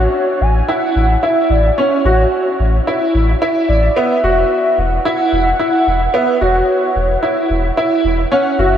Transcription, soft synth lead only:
Already playing: C#5
0.41 G#5
0.68 F#5
1.23 E5
1.50 D5
1.79 C#5
3.68 D5
3.96 E5
4.78 F#5
6.15 E5
6.42 C#5
8.31 F#5
8.59 E5

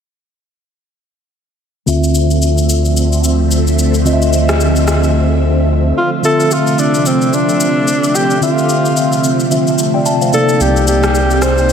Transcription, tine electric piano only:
1.86 D3 C4 F4 E5
4.05 D3 C4 F4 D#5
4.13 E5
6.23 D3 C4 F4 E5
8.41 D3 C4 F4 E5
9.51 D3 C4 F4 E5
9.94 D5 G5
10.06 E5 A5
10.21 C5 F5
10.32 C3 A#3 D#4 D5

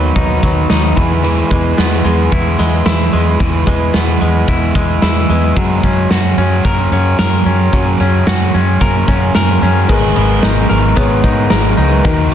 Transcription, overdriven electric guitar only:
Already playing: B3 D#4 B4
0.16 F#3 B3 D#4 B4
0.43 B3 D#4 B4
0.70 D#3 F#3 B3 D#4 B4
0.97 B3 G#4 B4
1.24 E3 G#3 B3 G#4 B4
1.50 B3 G#4 B4
1.78 E3 G#3 B3 G#4 B4
2.05 B3 G#4 B4
2.32 G#3 B3 G#4 B4
2.59 B3 G#4 B4
2.86 E3 G#3 B3 G#4 B4
3.12 B3 G#4 B4
3.40 E3 G#3 B3 G#4 B4
3.67 B3 G#4 B4
3.94 E3 G#3 B3 G#4 B4
4.21 B3 G#4 B4
4.48 G#3 B3 G#4 B4
4.75 B3 G#4 B4
5.02 E3 G#3 B3 G#4 B4
5.29 B3 G#4 B4
5.56 F#3 A#3 C#4 F#4 G#4
5.84 C#4 F#4 G#4
6.11 F#3 A#3 C#4 F#4 G#4
6.38 C#4 F#4 G#4
6.65 A#3 C#4 F#4 G#4
6.92 C#4 F#4 G#4
7.19 F#3 A#3 C#4 F#4 G#4
7.45 C#4 F#4 G#4
7.73 F#3 A#3 C#4 F#4 G#4
8.00 C#4 F#4 G#4
8.27 F#3 A#3 C#4 F#4 G#4
8.53 C#4 F#4 G#4
8.80 A#3 C#4 F#4 G#4
9.07 C#4 F#4 G#4
9.34 F#3 A#3 C#4 F#4 G#4
9.61 C#4 F#4 G#4
9.88 G#2 D#3 G#3 B3 G#4 A#4
10.16 G#3 B3 G#4 A#4
10.42 G#3 B3 G#4 A#4
10.70 G#3 B3 G#4 A#4
10.97 G#2 D#3 G#3 B3 G#4 A#4
11.23 G#3 B3 G#4 A#4
11.51 G#3 B3 G#4 A#4
11.77 G#3 B3 G#4 A#4
12.04 D#3 F#3 D#4 F#4 A#4
12.31 A#4

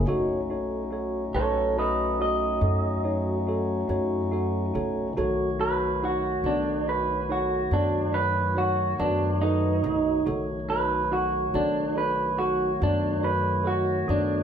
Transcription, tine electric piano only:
0.08 D#4 F#4 A4 C#5
0.50 D#4 F#4 A4 C#5
0.91 D#4 F#4 A4 C#5
1.34 D#4 F#4 A4 B4
1.77 D#4 F#4 A4 C#5
2.19 D#4 F#4 A4 C#5
2.61 D#4 F#4 A4 C#5
3.04 D#4 F#4 A4 C#5
3.47 D#4 F#4 A4 C#5
3.88 D#4 F#4 A4 C#5
4.31 D#4 F#4 A4 C#5
4.74 D#4 F#4 A4 C#5
5.17 D#4 F#4 A4 C#5
5.59 D#4 F#4 A4 C#5
6.02 D#4 F#4 A4 C#5
6.45 B3 F#4 A4 C#5
6.87 D#4 F#4 A4 C#5
7.29 D#4 F#4 A4 C#5
7.71 B3 F#4 A4 C#5
8.13 D#4 F#4 A4 C#5
8.54 D#4 F#4 A4 C#5
8.99 B3 F#4 A4 B4
9.42 D#4 F#4 A4 B4
9.85 D#4 F#4 A4 D#5
10.26 D#4 F#4 A4 C#5
10.68 D#4 F#4 A4 C#5
11.11 D#4 F#4 A4 C#5
11.53 B3 F#4 A4 C#5
11.95 D#4 F#4 A4 C#5
12.37 D#4 F#4 A4 C#5
12.80 B3 F#4 A4 C#5
13.22 D#4 F#4 A4 C#5
13.63 D#4 F#4 A4 C#5
14.06 B3 F#4 A4 D#6

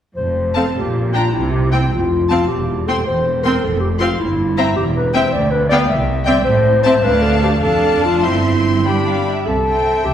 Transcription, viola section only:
0.56 C4
1.14 D4
1.73 C4
2.31 C4
2.89 C4
3.46 C4
4.00 C4
4.58 C4
5.15 C4
5.71 B3
6.28 C4
6.85 C4
7.04 D4
7.62 D4
8.24 C4
8.86 D4
9.66 C4

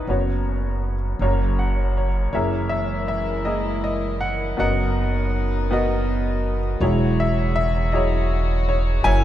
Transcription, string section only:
2.34 E3 G#3 E4 A#4
4.58 B2 D#4
6.81 C#3 G#3 F#4
9.04 E3 A#3

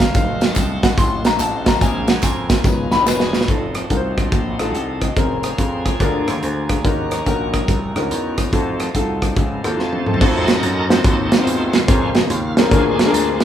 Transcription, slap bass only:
0.15 F1
0.57 C2
0.98 A1
1.25 A#1
1.40 A1
1.81 A#1
2.23 F2
2.64 C#2
2.92 A#1
3.07 E1
3.48 F1
3.91 C2
4.32 A#1
4.60 A1
4.74 C2
5.17 F1
5.58 F2
6.00 D2
6.28 D#2
6.43 D2
6.85 D#2
7.27 A#1
7.68 C2
7.96 C#2
8.11 E2
8.53 F2
8.95 C2
9.36 C#2
9.64 D#2
9.79 F2
10.21 F2
10.63 F#2
11.05 D#2
11.47 E2
11.88 F2
12.30 D#2
12.71 D2
13.13 D2

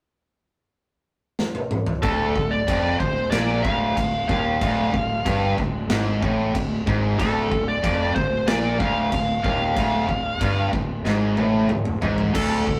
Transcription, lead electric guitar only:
2.02 A4
2.51 D5
3.00 C5
3.31 D5
3.62 F5
4.28 F5
7.19 A4
7.68 D5
8.15 C5
8.48 D5
8.80 F5
9.44 F5
12.35 A4

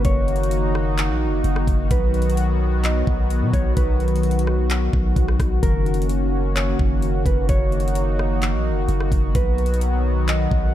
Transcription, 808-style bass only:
0.05 F#1
1.09 A#1
1.27 F#1
1.44 F#1
1.67 F#1
1.91 B1
3.07 B1
3.42 B2
3.54 B1
3.77 B1
4.93 B1
5.16 B1
5.40 B1
5.63 F#1
6.79 F#1
7.26 F#1
7.49 F#1
8.54 A#1
8.71 F#1
8.88 F#1
9.12 F#1
9.35 B1
10.51 B1

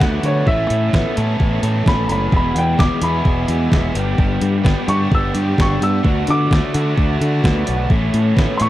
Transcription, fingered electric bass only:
0.00 D2
0.23 D3
0.47 A1
0.70 A2
0.94 A1
1.18 A2
1.40 A1
1.63 A2
1.86 A1
2.09 F#1
2.32 E1
2.55 E2
2.79 E1
3.02 E2
3.25 E1
3.48 E2
3.72 E1
3.95 G1
4.19 G1
4.41 G2
4.65 G1
4.88 G2
5.11 G1
5.35 G2
5.59 G1
5.81 G2
6.05 D2
6.28 D3
6.51 D2
6.75 D3
6.98 D2
7.21 D3
7.44 D2
7.68 B1
7.90 A1
8.14 A2
8.37 A1
8.61 A2

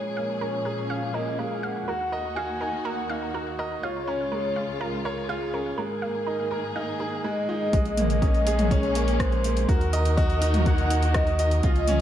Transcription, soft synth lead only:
Already playing: C#5
0.89 F5
1.14 D#5
1.38 F5
1.63 F#5
2.35 G#5
2.84 F#5
3.83 C#5
4.79 A#4
5.28 G#4
5.77 A#4
7.25 D#5
7.74 D#5
8.72 C#5
9.21 C5
9.68 A#4
10.17 D#5
10.66 F#5
11.15 D#5
11.64 D#5

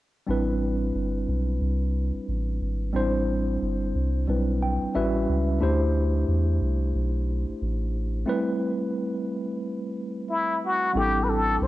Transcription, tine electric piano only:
0.26 G3 C4 D4 E4 B4
2.93 G3 C4 D4 E4 C5
4.28 G3 C4 D4 E4 B4
4.62 G5
4.94 G3 C#4 E4 F#4 B4 E5
5.60 A3 D4 E4 G4 C5
8.26 G3 A3 C4 E4 B4
10.93 G3 C4 D4 E4 A4

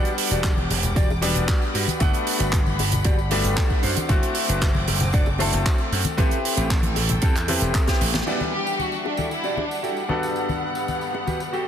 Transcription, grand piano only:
Already playing: G3 B3 D4 F#5
1.22 G3 B3 D4
2.00 A3 B3 D4 F#5
3.31 G3 A3 B3 D4
4.09 A3 C4 E4 F#4
5.39 A3 C4 E4 A4
6.17 C4 E4 G4 B4
7.48 C4 E4 G4 B4
7.87 B3 C4 E4 G4
8.26 E3 G3 D4 B4 F#5
10.09 G2 B3 D4 A4 F#5

